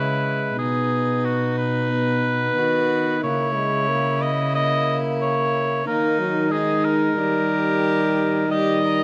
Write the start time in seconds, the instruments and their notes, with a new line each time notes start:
Already playing: cello C#3, trombone G#3, violin E4, oboe B4
0.58 cello B2, trombone B3, violin D#4, oboe G#4
1.25 oboe F#4
1.58 oboe B4
1.92 trombone B3
2.57 cello D#3, violin F#4
3.23 cello C#3, trombone A#3, violin E4, oboe C#5
3.55 trombone G#3
3.88 trombone A#3
4.22 oboe D#5
4.54 trombone A#3, oboe D#5
5.22 oboe C#5
5.86 cello D#3, trombone A#3, violin D#4, oboe A#4
6.19 trombone F#3
6.52 trombone G#3, violin D#4, oboe G#4
6.85 oboe A#4
7.18 cello D#3, trombone G3, violin G4
8.49 trombone G3, violin G4, oboe D#5
8.85 violin A#4